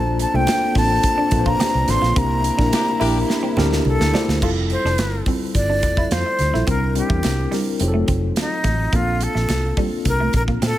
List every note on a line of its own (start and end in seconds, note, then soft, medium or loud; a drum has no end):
0.00 0.24 A#1 loud
0.00 0.21 A#3 medium
0.00 2.14 A#3 medium
0.00 4.38 C4 medium
0.00 0.22 D4 medium
0.00 4.38 D4 medium
0.00 0.22 F4 medium
0.00 0.22 A4 medium
0.00 0.22 C5 medium
0.00 0.20 A5 loud
0.19 0.37 A5 medium
0.19 muted clean electric guitar stroke soft
0.19 closed hi-hat medium
0.33 0.45 C2 medium
0.33 0.45 A3 medium
0.33 0.63 A#3 medium
0.33 0.64 D4 medium
0.33 0.64 F4 medium
0.33 0.64 A4 medium
0.33 0.64 C5 medium
0.33 0.77 G5 loud
0.47 snare loud
0.47 closed hi-hat medium
0.47 high conga medium
0.75 0.97 A1 medium
0.75 1.16 A#3 medium
0.75 0.86 C4 medium
0.75 1.16 D4 medium
0.75 1.16 F4 medium
0.75 1.16 A4 medium
0.75 1.16 C5 medium
0.75 1.49 A5 loud
0.75 kick medium
0.75 snare soft
0.75 open hi-hat medium
0.75 muted conga soft
1.03 kick medium
1.03 closed hi-hat loud
1.18 1.28 D4 medium
1.31 1.54 A#1 medium
1.31 1.72 A#3 medium
1.31 1.72 D4 medium
1.31 1.72 F4 medium
1.31 1.72 A4 medium
1.31 1.39 B4 medium
1.31 muted clean electric guitar stroke soft
1.31 kick medium
1.31 closed hi-hat medium
1.31 muted conga soft
1.31 low conga medium
1.39 1.75 C5 medium
1.46 1.56 F4 medium
1.46 1.92 A#5 loud
1.46 kick medium
1.59 1.70 G4 medium
1.59 snare loud
1.59 closed hi-hat medium
1.59 high conga medium
1.74 1.86 C2 medium
1.74 muted clean electric guitar stroke soft
1.87 1.99 A1 medium
1.87 2.08 A#3 medium
1.87 2.08 D4 medium
1.87 2.08 F4 medium
1.87 2.08 A4 medium
1.87 2.08 C5 medium
1.87 2.20 C6 loud
1.87 snare soft
1.87 closed hi-hat medium
1.87 high conga medium
2.02 2.13 A#1 medium
2.02 2.12 F4 medium
2.02 snare soft
2.16 2.49 C2 medium
2.16 4.39 C3 medium
2.16 4.39 G3 medium
2.16 2.46 A#3 medium
2.16 4.39 A#3 medium
2.16 2.27 C4 loud
2.16 2.46 D4 medium
2.16 4.39 E4 medium
2.16 2.47 E4 medium
2.16 2.47 G4 medium
2.16 2.47 A#4 medium
2.16 3.86 A#5 medium
2.16 kick loud
2.16 closed hi-hat medium
2.16 muted conga soft
2.44 muted clean electric guitar stroke soft
2.44 closed hi-hat medium
2.58 2.70 A#1 medium
2.58 2.88 A#3 medium
2.58 2.69 D4 medium
2.58 2.89 D4 medium
2.58 2.89 E4 medium
2.58 2.89 G4 medium
2.58 2.89 A#4 medium
2.58 kick loud
2.58 snare soft
2.73 2.85 D4 medium
2.73 2.85 E4 medium
2.73 2.85 G4 medium
2.73 snare loud
2.73 closed hi-hat medium
2.73 high conga medium
3.00 3.23 A#1 medium
3.00 3.41 A#3 medium
3.00 3.41 D4 medium
3.00 3.19 D4 medium
3.00 3.11 E4 medium
3.00 3.18 E4 medium
3.00 3.41 E4 medium
3.00 3.19 G4 loud
3.00 3.41 G4 medium
3.00 3.41 A#4 medium
3.00 open hi-hat medium
3.00 muted conga soft
3.29 muted clean electric guitar stroke soft
3.29 snare medium
3.43 3.53 C4 medium
3.57 3.79 D2 medium
3.57 3.68 C4 medium
3.57 3.97 D4 medium
3.57 3.97 E4 medium
3.57 3.98 G4 medium
3.57 3.97 A4 medium
3.57 3.98 A#4 loud
3.57 snare medium
3.57 muted conga medium
3.57 low conga medium
3.73 snare medium
3.85 3.96 C2 medium
3.85 4.39 A4 loud
3.85 high conga medium
4.00 4.11 D2 medium
4.00 snare medium
4.13 4.33 A3 medium
4.13 4.33 D4 medium
4.13 4.24 D4 medium
4.13 4.33 E4 medium
4.13 4.34 G4 medium
4.13 4.34 C5 loud
4.13 snare loud
4.13 high conga medium
4.28 4.39 D2 medium
4.28 snare medium
4.41 4.75 F1 loud
4.41 5.01 G3 medium
4.41 5.02 C4 medium
4.41 5.02 E4 medium
4.41 5.02 F4 medium
4.41 4.53 F4 medium
4.41 5.02 A4 medium
4.41 4.50 A4 medium
4.41 kick loud
4.41 crash medium
4.41 muted conga soft
4.70 5.23 C5 medium
4.70 muted clean electric guitar stroke soft
4.70 closed hi-hat medium
4.85 4.99 F1 medium
4.85 4.95 D4 medium
4.85 snare soft
4.98 5.20 G1 medium
4.98 snare medium
4.98 closed hi-hat medium
4.98 high conga medium
5.26 6.06 G3 medium
5.26 6.06 C4 medium
5.26 5.38 C4 medium
5.26 6.06 E4 medium
5.26 6.07 F4 medium
5.26 6.07 A4 medium
5.26 kick medium
5.26 open hi-hat medium
5.26 muted conga soft
5.55 5.83 G1 medium
5.55 6.14 D5 loud
5.55 kick medium
5.55 closed hi-hat medium
5.55 muted conga soft
5.70 5.80 D4 medium
5.83 6.05 F1 medium
5.83 muted clean electric guitar stroke soft
5.83 kick medium
5.83 closed hi-hat medium
5.83 muted conga soft
5.97 6.08 E4 medium
5.97 kick medium
6.11 6.22 F2 medium
6.11 6.22 F4 medium
6.11 6.68 C5 loud
6.11 snare loud
6.11 closed hi-hat medium
6.11 high conga medium
6.26 muted clean electric guitar stroke soft
6.39 6.51 D2 medium
6.39 snare soft
6.39 closed hi-hat medium
6.39 high conga medium
6.52 6.65 A#1 medium
6.52 6.63 G3 medium
6.52 6.63 C4 medium
6.52 6.63 E4 medium
6.52 6.64 E4 medium
6.52 6.63 F4 medium
6.52 6.64 A4 medium
6.52 snare soft
6.67 7.00 C2 medium
6.67 6.87 G3 medium
6.67 6.77 C4 medium
6.67 6.87 C4 medium
6.67 6.88 D4 medium
6.67 6.88 E4 medium
6.67 6.88 A#4 medium
6.67 6.94 A#4 medium
6.67 kick loud
6.67 closed hi-hat medium
6.67 muted conga soft
6.95 7.36 G3 medium
6.95 7.36 C4 medium
6.95 7.36 D4 medium
6.95 7.36 E4 medium
6.95 7.77 G4 medium
6.95 7.36 A#4 medium
6.95 muted clean electric guitar stroke soft
6.95 closed hi-hat medium
7.09 7.21 E2 medium
7.09 7.20 A3 medium
7.09 kick loud
7.23 7.46 C2 medium
7.23 snare medium
7.23 closed hi-hat medium
7.23 high conga medium
7.51 7.62 G3 medium
7.51 7.80 G3 medium
7.51 7.79 C4 medium
7.51 7.80 D4 medium
7.51 7.81 E4 medium
7.51 7.81 A#4 medium
7.51 snare soft
7.51 open hi-hat medium
7.51 muted conga soft
7.80 8.02 F1 medium
7.80 8.71 F#3 medium
7.80 8.71 C4 medium
7.80 8.71 D#4 medium
7.80 8.71 F4 medium
7.80 7.87 G#4 medium
7.80 muted clean electric guitar stroke soft
7.80 closed hi-hat medium
7.88 8.74 A4 medium
7.94 8.04 A3 medium
8.08 8.30 F1 medium
8.08 8.18 C4 medium
8.08 kick medium
8.08 closed hi-hat medium
8.08 muted conga soft
8.36 8.97 D#4 medium
8.36 snare loud
8.36 closed hi-hat medium
8.36 high conga medium
8.64 8.86 A1 medium
8.64 8.75 A3 medium
8.64 kick medium
8.64 snare soft
8.64 closed hi-hat medium
8.64 high conga medium
8.92 9.26 A#1 medium
8.92 9.53 A#3 medium
8.92 9.03 A#3 medium
8.92 9.53 C4 medium
8.92 9.53 D4 medium
8.92 9.53 F4 medium
8.92 9.25 F4 loud
8.92 9.54 A4 medium
8.92 kick loud
8.92 closed hi-hat medium
8.92 muted conga soft
9.21 9.79 A4 medium
9.21 muted clean electric guitar stroke soft
9.21 closed hi-hat medium
9.35 9.46 A#1 medium
9.35 9.45 A3 medium
9.35 snare soft
9.49 9.71 C2 medium
9.49 snare medium
9.49 closed hi-hat medium
9.49 high conga medium
9.77 9.88 G3 medium
9.77 10.58 A#3 medium
9.77 10.58 C4 medium
9.77 10.58 D4 medium
9.77 10.58 F4 medium
9.77 10.58 A4 medium
9.77 kick medium
9.77 open hi-hat medium
9.77 muted conga soft
10.05 10.28 C2 medium
10.05 10.33 A#4 loud
10.05 kick medium
10.05 closed hi-hat loud
10.05 muted conga soft
10.20 10.31 A3 medium
10.33 10.56 A#1 medium
10.33 10.42 A#4 medium
10.33 muted clean electric guitar stroke soft
10.33 kick medium
10.33 closed hi-hat medium
10.33 muted conga soft
10.48 10.58 A#3 medium
10.48 kick medium
10.62 10.73 A#2 loud
10.62 10.73 C4 medium
10.62 10.78 A4 loud
10.62 snare loud
10.62 closed hi-hat medium
10.62 high conga medium